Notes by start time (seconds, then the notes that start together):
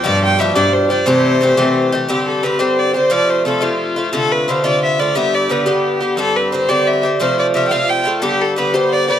Already playing: C5 F5 G5
0.04 G2 B2 F3 D4 G4 D5
0.24 G5
0.39 B2 F3 D4 G4 E5
0.55 G2 B2 F3 D4 G4 D5
0.73 C5
0.90 F3 D4 G4 D5
1.06 C3 E3 A3 G4 C5
1.41 C3 E3 A3 G4
1.57 C3 E3 A3 G4
1.92 E3 A3 G4
2.08 G2 D3 C4 G4
2.27 A4
2.43 G2 D3 C4 G4 B4
2.59 G2 D3 C4 G4 C5
2.79 D5
2.94 D3 C4 G4 C5
3.10 C3 F3 A3 F4 D5
3.30 C5
3.45 C3 F3 A3 F4 A4
3.61 C3 F3 A3 F4
3.96 F3 A3 F4
4.13 C3 D3 A3 F4 A4
4.32 B4
4.48 C3 D3 A3 F4 C5
4.64 C3 D3 A3 F4 D5
4.83 E5
4.99 D3 A3 F4 D5
5.15 G2 D3 B3 G4 E5
5.34 D5
5.49 G2 D3 B3 G4 B4
5.66 G2 D3 B3 G4
6.01 D3 B3 G4
6.17 G2 D3 C4 G4 A4
6.36 B4
6.52 G2 D3 C4 G4 C5
6.69 G2 D3 C4 G4 D5
6.81 D5
6.87 E5
6.93 D5
7.03 D3 C4 G4
7.20 C3 F3 A3 F4 C5
7.39 D5
7.54 C3 F3 A3 F4 E5
7.67 F4 F5 G5
7.72 C3 F3 A3 F5
7.89 G5
8.05 F3 A3 F4
8.18 G2 D3 A4
8.23 B3 G4
8.41 A4
8.56 G2 D3 B3 G4 B4
8.74 G2 D3 B3 G4 C5
8.92 D5
9.08 D3 B3 G4 D5